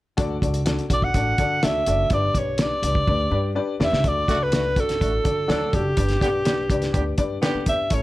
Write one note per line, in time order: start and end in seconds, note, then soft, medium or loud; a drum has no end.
0.17 0.35 D2 medium
0.17 0.35 D4 loud
0.17 0.35 F#4 loud
0.17 0.35 A4 loud
0.17 0.35 D5 loud
0.17 kick loud
0.17 closed hi-hat medium
0.42 0.77 C#2 medium
0.42 0.60 D4 medium
0.42 0.60 F#4 medium
0.42 0.60 A4 medium
0.42 0.60 D5 medium
0.42 kick medium
0.42 closed hi-hat medium
0.54 closed hi-hat medium
0.65 0.83 D4 medium
0.65 0.83 F#4 medium
0.65 0.84 A4 medium
0.65 0.84 D5 medium
0.65 snare medium
0.65 closed hi-hat medium
0.79 closed hi-hat soft
0.90 1.08 B1 medium
0.90 1.08 D4 medium
0.90 1.08 F#4 medium
0.90 1.08 A4 medium
0.90 1.08 D5 medium
0.90 1.06 D5 medium
0.90 kick medium
0.90 closed hi-hat medium
1.02 1.66 F#5 medium
1.02 kick medium
1.14 1.32 A1 medium
1.14 1.32 D4 medium
1.14 1.32 F#4 medium
1.14 1.33 A4 medium
1.14 1.32 D5 loud
1.14 kick medium
1.14 closed hi-hat medium
1.38 1.56 D3 medium
1.38 1.56 D4 medium
1.38 1.56 F#4 medium
1.38 1.56 A4 medium
1.38 1.56 D5 medium
1.38 kick medium
1.38 closed hi-hat medium
1.63 1.80 D2 medium
1.63 1.80 D4 medium
1.63 1.80 F#4 medium
1.63 1.80 A4 medium
1.63 1.81 D5 medium
1.63 2.15 E5 loud
1.63 snare medium
1.63 closed hi-hat medium
1.86 2.04 F#1 medium
1.86 2.04 D4 medium
1.86 2.05 F#4 medium
1.86 2.05 A4 medium
1.86 2.05 D5 medium
1.86 closed hi-hat medium
2.10 2.28 G1 loud
2.10 2.29 D4 medium
2.10 2.29 G4 medium
2.10 2.29 B4 medium
2.10 2.29 D5 medium
2.10 2.40 D5 medium
2.10 kick loud
2.10 closed hi-hat medium
2.34 2.69 B1 medium
2.34 2.53 D4 medium
2.34 2.53 G4 medium
2.34 2.53 B4 medium
2.34 2.53 D5 medium
2.34 kick medium
2.34 closed hi-hat medium
2.39 2.64 C#5 medium
2.58 2.76 D4 medium
2.58 2.76 G4 medium
2.58 2.77 B4 medium
2.58 2.77 D5 medium
2.58 snare loud
2.58 closed hi-hat medium
2.62 3.57 D5 medium
2.83 3.00 C#2 medium
2.83 3.01 D4 medium
2.83 3.01 G4 medium
2.83 3.01 B4 medium
2.83 3.01 D5 medium
2.83 closed hi-hat medium
2.95 kick medium
3.07 3.25 D2 loud
3.07 3.25 D4 medium
3.07 3.25 G4 medium
3.07 3.25 B4 medium
3.07 3.25 D5 medium
3.07 kick medium
3.31 3.57 G2 medium
3.31 3.49 D4 medium
3.31 3.49 G4 medium
3.31 3.49 B4 medium
3.31 3.49 D5 medium
3.55 3.73 D4 loud
3.55 3.73 G4 medium
3.55 3.73 B4 loud
3.55 3.73 D5 loud
3.80 3.89 E2 medium
3.80 3.97 D4 medium
3.80 3.97 G4 medium
3.80 3.98 B4 medium
3.80 3.97 D5 loud
3.80 4.09 E5 loud
3.80 snare medium
3.92 4.00 C#2 medium
3.92 snare medium
4.04 4.21 D2 medium
4.04 4.22 D4 medium
4.04 4.22 F#4 medium
4.04 4.22 A4 medium
4.04 4.22 D5 loud
4.04 kick loud
4.04 closed hi-hat medium
4.08 4.45 D5 medium
4.28 4.77 C#2 medium
4.28 4.36 D3 medium
4.28 4.36 A3 medium
4.28 4.46 D4 medium
4.28 4.46 F#4 medium
4.28 4.36 F#4 loud
4.28 4.46 A4 medium
4.28 4.46 D5 medium
4.28 kick medium
4.28 closed hi-hat medium
4.43 4.82 B4 loud
4.52 4.63 D3 medium
4.52 4.63 A3 medium
4.52 4.70 D4 medium
4.52 4.70 F#4 soft
4.52 4.63 F#4 medium
4.52 4.70 A4 medium
4.52 4.70 D5 medium
4.52 snare loud
4.52 closed hi-hat medium
4.76 4.94 B1 medium
4.76 4.94 D4 medium
4.76 4.94 F#4 medium
4.76 4.94 A4 medium
4.76 5.76 A4 medium
4.76 4.94 D5 medium
4.76 kick medium
4.76 closed hi-hat medium
4.89 snare soft
4.89 closed hi-hat soft
5.00 5.18 A1 medium
5.00 5.11 D3 medium
5.00 5.11 A3 medium
5.00 5.18 D4 medium
5.00 5.18 F#4 medium
5.00 5.11 F#4 medium
5.00 5.18 A4 medium
5.00 5.18 D5 medium
5.00 kick medium
5.00 closed hi-hat medium
5.24 5.42 D3 medium
5.24 5.42 D4 medium
5.24 5.42 F#4 medium
5.24 5.42 A4 medium
5.24 5.42 D5 medium
5.24 kick medium
5.24 closed hi-hat medium
5.48 5.75 D2 medium
5.48 5.83 F#3 medium
5.48 5.66 D4 medium
5.48 5.83 D4 medium
5.48 5.66 F#4 medium
5.48 5.66 A4 medium
5.48 5.83 A4 medium
5.48 5.66 D5 loud
5.48 snare loud
5.48 closed hi-hat medium
5.73 5.91 F#1 medium
5.73 5.90 D4 medium
5.73 5.90 F#4 medium
5.73 7.19 G4 medium
5.73 5.91 A4 medium
5.73 5.91 D5 medium
5.73 kick medium
5.73 closed hi-hat medium
5.97 6.15 G1 loud
5.97 6.15 D4 loud
5.97 6.15 G4 medium
5.97 6.15 B4 medium
5.97 6.15 D5 medium
5.97 kick loud
5.97 closed hi-hat medium
6.09 snare soft
6.09 closed hi-hat soft
6.21 6.69 B1 medium
6.21 6.29 D3 medium
6.21 6.29 B3 medium
6.21 6.39 D4 medium
6.21 6.39 G4 medium
6.21 6.29 G4 loud
6.21 6.39 B4 medium
6.21 6.39 D5 medium
6.21 kick medium
6.21 closed hi-hat medium
6.45 6.56 D3 medium
6.45 6.55 B3 medium
6.45 6.63 D4 medium
6.45 6.63 G4 medium
6.45 6.56 G4 medium
6.45 6.63 B4 medium
6.45 6.63 D5 medium
6.45 snare medium
6.45 closed hi-hat medium
6.69 6.87 C#2 medium
6.69 6.88 D4 medium
6.69 6.88 G4 medium
6.69 6.88 B4 medium
6.69 6.88 D5 medium
6.69 kick loud
6.69 closed hi-hat medium
6.82 snare soft
6.82 closed hi-hat soft
6.93 7.11 D2 medium
6.93 7.04 D3 medium
6.93 7.04 B3 medium
6.93 7.11 D4 medium
6.93 7.03 G4 medium
6.93 7.12 G4 medium
6.93 7.12 B4 medium
6.93 7.12 D5 medium
6.93 kick medium
6.93 closed hi-hat medium
7.18 7.35 G2 medium
7.18 7.36 D4 medium
7.18 7.36 G4 medium
7.18 7.36 B4 medium
7.18 7.36 D5 loud
7.18 kick medium
7.18 closed hi-hat medium
7.41 7.76 D3 medium
7.41 7.77 B3 medium
7.41 7.60 D4 medium
7.41 7.76 G4 loud
7.41 7.60 G4 medium
7.41 7.60 B4 medium
7.41 7.60 D5 loud
7.41 snare medium
7.41 closed hi-hat medium
7.55 muted upright bass stroke soft
7.66 7.84 E2 medium
7.66 7.85 D4 medium
7.66 7.85 G4 medium
7.66 7.85 B4 medium
7.66 7.85 D5 medium
7.66 7.95 E5 medium
7.66 kick medium
7.66 closed hi-hat medium
7.90 8.03 A1 loud
7.90 8.03 C#4 medium
7.90 8.03 E4 medium
7.90 8.03 A4 medium
7.90 8.03 C#5 medium
7.90 kick loud
7.90 closed hi-hat medium